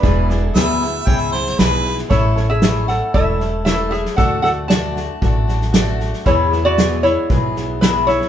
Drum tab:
HH |----p-------p---|----p-------p---|----p-------p---|----p-------p---|
SD |o-o-o-o-o-ooo-oo|o-o-o-o-o-o-o-oo|o-o-o-o-o-ooo-oo|o-o-o-o-o-o-o-oo|
BD |o-------o-------|o-------o-------|o-------o-------|o-------o-------|